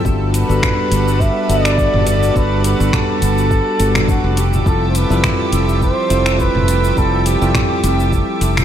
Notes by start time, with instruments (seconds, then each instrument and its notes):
Already playing: analog synth pad A4
0.04 fingered electric bass G1, tine electric piano G3 B3 D4 F#4 A4, analog synth pad G3 F#4 B4, synth texture D6, kick, shaker
0.34 muted trumpet B4, closed hi-hat, shaker
0.49 fingered electric bass G1, tine electric piano G3 B3 D4 F#4 A4, shaker
0.63 finger snap, kick, mid tom, shaker
0.91 fingered electric bass G1, closed hi-hat, shaker
1.08 shaker
1.20 muted trumpet E5, kick, shaker
1.48 fingered electric bass G1, tine electric piano G3 B3 D4 F#4 A4, muted trumpet D5, closed hi-hat, shaker
1.63 tine electric piano G3 B3 D4 F#4 A4, finger snap, shaker
1.78 kick, shaker
1.94 fingered electric bass G1, mid tom
2.07 muted trumpet D5, closed hi-hat, shaker
2.23 shaker
2.34 fingered electric bass G1, tine electric piano G3 B3 D4 F#4 A4, muted trumpet B4, kick, shaker
2.64 muted trumpet B4, closed hi-hat, shaker
2.79 fingered electric bass G1, tine electric piano G3 B3 D4 F#4 A4, shaker
2.93 muted trumpet A4, finger snap, kick, mid tom, shaker
3.22 fingered electric bass G1, closed hi-hat, shaker
3.38 shaker
3.51 kick, shaker
3.79 fingered electric bass G1, tine electric piano G3 B3 D4 F#4 A4, closed hi-hat, shaker
3.94 tine electric piano G3 B3 D4 F#4 A4, finger snap, mid tom, shaker
4.08 muted trumpet F#4, kick, shaker
4.24 fingered electric bass F1
4.37 analog synth pad F3 G4 E5, muted trumpet G4, closed hi-hat, shaker
4.53 mid tom, shaker
4.65 fingered electric bass F1, tine electric piano G3 C4 E4 F4 A4, muted trumpet A4, kick, shaker
4.89 muted trumpet C5
4.95 muted trumpet B4, closed hi-hat, shaker
5.09 fingered electric bass F1, tine electric piano G3 C4 E4 F4 A4, shaker
5.24 finger snap, kick, mid tom, shaker
5.52 fingered electric bass F1, closed hi-hat, shaker
5.69 shaker
5.81 muted trumpet C5, kick, shaker
6.09 fingered electric bass F1, tine electric piano G3 C4 E4 F4 A4, closed hi-hat, shaker
6.24 tine electric piano G3 C4 E4 F4 A4, finger snap, shaker
6.39 muted trumpet B4, kick, shaker
6.55 fingered electric bass F1, mid tom
6.68 closed hi-hat, shaker
6.84 shaker
6.96 fingered electric bass F1, tine electric piano G3 C4 E4 F4 A4, muted trumpet A4, kick, shaker
7.26 muted trumpet G4, closed hi-hat, shaker
7.41 fingered electric bass F1, tine electric piano G3 C4 E4 F4 A4, shaker
7.54 finger snap, kick, mid tom, shaker
7.84 fingered electric bass F1, closed hi-hat, shaker
8.00 shaker
8.12 kick, shaker
8.41 fingered electric bass F1, closed hi-hat, shaker
8.57 finger snap, mid tom, shaker